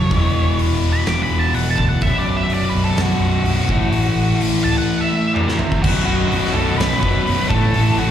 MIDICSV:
0, 0, Header, 1, 6, 480
1, 0, Start_track
1, 0, Tempo, 476948
1, 119, Time_signature, 4, 2, 24, 8
1, 8161, End_track
2, 0, Start_track
2, 0, Title_t, "Lead electric guitar"
2, 0, Program_c, 0, 29
2, 0, Note_on_c, 0, 73, 105
2, 576, Note_off_c, 0, 73, 0
2, 933, Note_on_c, 0, 83, 95
2, 1081, Note_off_c, 0, 83, 0
2, 1092, Note_on_c, 0, 86, 82
2, 1235, Note_off_c, 0, 86, 0
2, 1239, Note_on_c, 0, 83, 92
2, 1401, Note_off_c, 0, 83, 0
2, 1401, Note_on_c, 0, 81, 98
2, 1553, Note_on_c, 0, 78, 86
2, 1555, Note_off_c, 0, 81, 0
2, 1711, Note_off_c, 0, 78, 0
2, 1716, Note_on_c, 0, 81, 86
2, 1897, Note_off_c, 0, 81, 0
2, 1897, Note_on_c, 0, 78, 79
2, 2038, Note_off_c, 0, 78, 0
2, 2038, Note_on_c, 0, 76, 93
2, 2194, Note_off_c, 0, 76, 0
2, 2197, Note_on_c, 0, 74, 88
2, 2381, Note_off_c, 0, 74, 0
2, 2381, Note_on_c, 0, 76, 92
2, 2526, Note_off_c, 0, 76, 0
2, 2556, Note_on_c, 0, 74, 95
2, 2711, Note_off_c, 0, 74, 0
2, 2711, Note_on_c, 0, 71, 85
2, 2851, Note_off_c, 0, 71, 0
2, 2865, Note_on_c, 0, 69, 89
2, 3035, Note_off_c, 0, 69, 0
2, 3035, Note_on_c, 0, 66, 78
2, 4418, Note_off_c, 0, 66, 0
2, 4670, Note_on_c, 0, 81, 87
2, 4792, Note_off_c, 0, 81, 0
2, 4811, Note_on_c, 0, 78, 99
2, 5039, Note_off_c, 0, 78, 0
2, 5039, Note_on_c, 0, 76, 89
2, 5375, Note_on_c, 0, 62, 100
2, 5501, Note_off_c, 0, 76, 0
2, 5513, Note_on_c, 0, 76, 84
2, 5622, Note_on_c, 0, 64, 93
2, 5631, Note_off_c, 0, 76, 0
2, 5631, Note_on_c, 0, 74, 96
2, 5635, Note_off_c, 0, 62, 0
2, 5858, Note_off_c, 0, 64, 0
2, 5862, Note_on_c, 0, 66, 113
2, 5868, Note_off_c, 0, 74, 0
2, 6081, Note_off_c, 0, 66, 0
2, 6093, Note_on_c, 0, 66, 111
2, 6319, Note_off_c, 0, 66, 0
2, 6331, Note_on_c, 0, 66, 94
2, 6573, Note_on_c, 0, 69, 104
2, 6593, Note_off_c, 0, 66, 0
2, 6818, Note_off_c, 0, 69, 0
2, 6822, Note_on_c, 0, 71, 100
2, 7034, Note_off_c, 0, 71, 0
2, 7046, Note_on_c, 0, 71, 124
2, 7537, Note_off_c, 0, 71, 0
2, 7541, Note_on_c, 0, 69, 99
2, 8039, Note_on_c, 0, 66, 114
2, 8043, Note_off_c, 0, 69, 0
2, 8161, Note_off_c, 0, 66, 0
2, 8161, End_track
3, 0, Start_track
3, 0, Title_t, "Distorted electric guitar"
3, 0, Program_c, 1, 30
3, 0, Note_on_c, 1, 49, 89
3, 0, Note_on_c, 1, 54, 110
3, 111, Note_off_c, 1, 49, 0
3, 151, Note_off_c, 1, 54, 0
3, 8161, End_track
4, 0, Start_track
4, 0, Title_t, "Distorted electric guitar"
4, 0, Program_c, 2, 30
4, 0, Note_on_c, 2, 49, 86
4, 0, Note_on_c, 2, 54, 93
4, 105, Note_off_c, 2, 49, 0
4, 106, Note_on_c, 2, 40, 82
4, 127, Note_on_c, 2, 47, 101
4, 131, Note_off_c, 2, 54, 0
4, 135, Note_on_c, 2, 52, 92
4, 804, Note_off_c, 2, 52, 0
4, 812, Note_off_c, 2, 47, 0
4, 816, Note_on_c, 2, 52, 81
4, 818, Note_off_c, 2, 40, 0
4, 824, Note_on_c, 2, 47, 78
4, 837, Note_on_c, 2, 40, 75
4, 1534, Note_off_c, 2, 52, 0
4, 1537, Note_off_c, 2, 47, 0
4, 1540, Note_off_c, 2, 40, 0
4, 1552, Note_on_c, 2, 40, 80
4, 1560, Note_on_c, 2, 47, 86
4, 1577, Note_on_c, 2, 52, 98
4, 2021, Note_off_c, 2, 40, 0
4, 2025, Note_off_c, 2, 47, 0
4, 2029, Note_on_c, 2, 35, 100
4, 2034, Note_off_c, 2, 52, 0
4, 2043, Note_on_c, 2, 42, 99
4, 2050, Note_on_c, 2, 47, 102
4, 2740, Note_off_c, 2, 35, 0
4, 2748, Note_off_c, 2, 42, 0
4, 2751, Note_off_c, 2, 47, 0
4, 2764, Note_on_c, 2, 47, 93
4, 2784, Note_on_c, 2, 35, 75
4, 2784, Note_on_c, 2, 42, 79
4, 3468, Note_off_c, 2, 47, 0
4, 3469, Note_off_c, 2, 35, 0
4, 3478, Note_off_c, 2, 42, 0
4, 3482, Note_on_c, 2, 35, 90
4, 3491, Note_on_c, 2, 42, 85
4, 3504, Note_on_c, 2, 47, 91
4, 3707, Note_off_c, 2, 35, 0
4, 3711, Note_off_c, 2, 42, 0
4, 3718, Note_off_c, 2, 47, 0
4, 3727, Note_on_c, 2, 45, 92
4, 3736, Note_on_c, 2, 52, 86
4, 3751, Note_on_c, 2, 57, 105
4, 4423, Note_off_c, 2, 45, 0
4, 4434, Note_off_c, 2, 52, 0
4, 4435, Note_on_c, 2, 45, 89
4, 4442, Note_off_c, 2, 57, 0
4, 4453, Note_on_c, 2, 52, 85
4, 4458, Note_on_c, 2, 57, 101
4, 5144, Note_off_c, 2, 45, 0
4, 5152, Note_off_c, 2, 57, 0
4, 5153, Note_off_c, 2, 52, 0
4, 5164, Note_on_c, 2, 57, 78
4, 5169, Note_on_c, 2, 52, 74
4, 5186, Note_on_c, 2, 45, 67
4, 5628, Note_off_c, 2, 57, 0
4, 5631, Note_off_c, 2, 52, 0
4, 5639, Note_off_c, 2, 45, 0
4, 5892, Note_on_c, 2, 35, 101
4, 5898, Note_on_c, 2, 42, 116
4, 5904, Note_on_c, 2, 47, 127
4, 6119, Note_off_c, 2, 35, 0
4, 6125, Note_off_c, 2, 47, 0
4, 6126, Note_off_c, 2, 42, 0
4, 6131, Note_on_c, 2, 35, 72
4, 6137, Note_on_c, 2, 47, 84
4, 6138, Note_on_c, 2, 42, 83
4, 6347, Note_off_c, 2, 35, 0
4, 6353, Note_off_c, 2, 47, 0
4, 6356, Note_off_c, 2, 42, 0
4, 6359, Note_on_c, 2, 35, 116
4, 6365, Note_on_c, 2, 47, 101
4, 6368, Note_on_c, 2, 42, 101
4, 6582, Note_off_c, 2, 35, 0
4, 6588, Note_off_c, 2, 42, 0
4, 6594, Note_off_c, 2, 47, 0
4, 6594, Note_on_c, 2, 35, 91
4, 6600, Note_on_c, 2, 42, 105
4, 6606, Note_on_c, 2, 47, 107
4, 6810, Note_off_c, 2, 35, 0
4, 6817, Note_off_c, 2, 42, 0
4, 6822, Note_on_c, 2, 35, 97
4, 6823, Note_off_c, 2, 47, 0
4, 6829, Note_on_c, 2, 42, 114
4, 6835, Note_on_c, 2, 47, 119
4, 7048, Note_off_c, 2, 35, 0
4, 7053, Note_off_c, 2, 42, 0
4, 7060, Note_off_c, 2, 47, 0
4, 7060, Note_on_c, 2, 35, 88
4, 7065, Note_on_c, 2, 42, 87
4, 7072, Note_on_c, 2, 47, 107
4, 7313, Note_off_c, 2, 35, 0
4, 7316, Note_off_c, 2, 42, 0
4, 7322, Note_off_c, 2, 47, 0
4, 7325, Note_on_c, 2, 35, 104
4, 7328, Note_on_c, 2, 42, 101
4, 7334, Note_on_c, 2, 47, 106
4, 7547, Note_off_c, 2, 35, 0
4, 7548, Note_off_c, 2, 42, 0
4, 7551, Note_off_c, 2, 47, 0
4, 7562, Note_on_c, 2, 45, 106
4, 7571, Note_on_c, 2, 57, 106
4, 7572, Note_on_c, 2, 52, 97
4, 7795, Note_off_c, 2, 45, 0
4, 7798, Note_off_c, 2, 52, 0
4, 7803, Note_off_c, 2, 57, 0
4, 7807, Note_on_c, 2, 45, 97
4, 7810, Note_on_c, 2, 52, 123
4, 7815, Note_on_c, 2, 57, 127
4, 8040, Note_off_c, 2, 45, 0
4, 8051, Note_off_c, 2, 57, 0
4, 8052, Note_off_c, 2, 52, 0
4, 8052, Note_on_c, 2, 45, 88
4, 8064, Note_on_c, 2, 52, 77
4, 8064, Note_on_c, 2, 57, 86
4, 8161, Note_off_c, 2, 45, 0
4, 8161, Note_off_c, 2, 52, 0
4, 8161, Note_off_c, 2, 57, 0
4, 8161, End_track
5, 0, Start_track
5, 0, Title_t, "Picked electric bass"
5, 0, Program_c, 3, 34
5, 111, Note_on_c, 3, 28, 93
5, 269, Note_off_c, 3, 28, 0
5, 351, Note_on_c, 3, 28, 73
5, 509, Note_off_c, 3, 28, 0
5, 590, Note_on_c, 3, 28, 88
5, 748, Note_off_c, 3, 28, 0
5, 818, Note_on_c, 3, 28, 89
5, 980, Note_off_c, 3, 28, 0
5, 1067, Note_on_c, 3, 28, 99
5, 1226, Note_off_c, 3, 28, 0
5, 1309, Note_on_c, 3, 28, 92
5, 1468, Note_off_c, 3, 28, 0
5, 1556, Note_on_c, 3, 28, 108
5, 1712, Note_off_c, 3, 28, 0
5, 1798, Note_on_c, 3, 38, 85
5, 1954, Note_off_c, 3, 38, 0
5, 2033, Note_on_c, 3, 23, 89
5, 2191, Note_off_c, 3, 23, 0
5, 2284, Note_on_c, 3, 23, 79
5, 2438, Note_off_c, 3, 23, 0
5, 2510, Note_on_c, 3, 23, 86
5, 2669, Note_off_c, 3, 23, 0
5, 2757, Note_on_c, 3, 23, 85
5, 2914, Note_off_c, 3, 23, 0
5, 2986, Note_on_c, 3, 23, 92
5, 3147, Note_off_c, 3, 23, 0
5, 3222, Note_on_c, 3, 23, 92
5, 3383, Note_off_c, 3, 23, 0
5, 3459, Note_on_c, 3, 23, 99
5, 3621, Note_off_c, 3, 23, 0
5, 3712, Note_on_c, 3, 33, 89
5, 3870, Note_off_c, 3, 33, 0
5, 3938, Note_on_c, 3, 33, 99
5, 4101, Note_off_c, 3, 33, 0
5, 4180, Note_on_c, 3, 33, 70
5, 4342, Note_off_c, 3, 33, 0
5, 4425, Note_on_c, 3, 33, 79
5, 4586, Note_off_c, 3, 33, 0
5, 4674, Note_on_c, 3, 25, 98
5, 4832, Note_off_c, 3, 25, 0
5, 5876, Note_on_c, 3, 23, 106
5, 6029, Note_off_c, 3, 23, 0
5, 6109, Note_on_c, 3, 23, 73
5, 6264, Note_off_c, 3, 23, 0
5, 6353, Note_on_c, 3, 23, 91
5, 6507, Note_off_c, 3, 23, 0
5, 6586, Note_on_c, 3, 23, 95
5, 6742, Note_off_c, 3, 23, 0
5, 6817, Note_on_c, 3, 23, 96
5, 6976, Note_off_c, 3, 23, 0
5, 7073, Note_on_c, 3, 23, 92
5, 7227, Note_off_c, 3, 23, 0
5, 7314, Note_on_c, 3, 23, 110
5, 7467, Note_off_c, 3, 23, 0
5, 7559, Note_on_c, 3, 33, 94
5, 7710, Note_off_c, 3, 33, 0
5, 7793, Note_on_c, 3, 33, 92
5, 7946, Note_off_c, 3, 33, 0
5, 8033, Note_on_c, 3, 33, 80
5, 8161, Note_off_c, 3, 33, 0
5, 8161, End_track
6, 0, Start_track
6, 0, Title_t, "Drums"
6, 112, Note_on_c, 9, 36, 115
6, 112, Note_on_c, 9, 46, 70
6, 213, Note_off_c, 9, 36, 0
6, 213, Note_off_c, 9, 46, 0
6, 591, Note_on_c, 9, 46, 54
6, 692, Note_off_c, 9, 46, 0
6, 1069, Note_on_c, 9, 46, 73
6, 1078, Note_on_c, 9, 38, 123
6, 1170, Note_off_c, 9, 46, 0
6, 1179, Note_off_c, 9, 38, 0
6, 1552, Note_on_c, 9, 46, 60
6, 1653, Note_off_c, 9, 46, 0
6, 1793, Note_on_c, 9, 36, 80
6, 1893, Note_off_c, 9, 36, 0
6, 2025, Note_on_c, 9, 46, 61
6, 2032, Note_on_c, 9, 36, 114
6, 2126, Note_off_c, 9, 46, 0
6, 2133, Note_off_c, 9, 36, 0
6, 2513, Note_on_c, 9, 46, 52
6, 2614, Note_off_c, 9, 46, 0
6, 2990, Note_on_c, 9, 46, 69
6, 2999, Note_on_c, 9, 38, 123
6, 3091, Note_off_c, 9, 46, 0
6, 3100, Note_off_c, 9, 38, 0
6, 3477, Note_on_c, 9, 46, 55
6, 3577, Note_off_c, 9, 46, 0
6, 3713, Note_on_c, 9, 36, 94
6, 3814, Note_off_c, 9, 36, 0
6, 3949, Note_on_c, 9, 46, 62
6, 4050, Note_off_c, 9, 46, 0
6, 4435, Note_on_c, 9, 46, 58
6, 4536, Note_off_c, 9, 46, 0
6, 5394, Note_on_c, 9, 48, 71
6, 5495, Note_off_c, 9, 48, 0
6, 5518, Note_on_c, 9, 38, 67
6, 5618, Note_off_c, 9, 38, 0
6, 5627, Note_on_c, 9, 45, 91
6, 5728, Note_off_c, 9, 45, 0
6, 5755, Note_on_c, 9, 36, 102
6, 5855, Note_off_c, 9, 36, 0
6, 5877, Note_on_c, 9, 36, 127
6, 5877, Note_on_c, 9, 49, 127
6, 5978, Note_off_c, 9, 36, 0
6, 5978, Note_off_c, 9, 49, 0
6, 6358, Note_on_c, 9, 46, 58
6, 6459, Note_off_c, 9, 46, 0
6, 6492, Note_on_c, 9, 38, 32
6, 6593, Note_off_c, 9, 38, 0
6, 6842, Note_on_c, 9, 46, 70
6, 6851, Note_on_c, 9, 38, 127
6, 6943, Note_off_c, 9, 46, 0
6, 6952, Note_off_c, 9, 38, 0
6, 7073, Note_on_c, 9, 36, 85
6, 7174, Note_off_c, 9, 36, 0
6, 7317, Note_on_c, 9, 46, 73
6, 7418, Note_off_c, 9, 46, 0
6, 7553, Note_on_c, 9, 36, 104
6, 7653, Note_off_c, 9, 36, 0
6, 7790, Note_on_c, 9, 46, 73
6, 7891, Note_off_c, 9, 46, 0
6, 8161, End_track
0, 0, End_of_file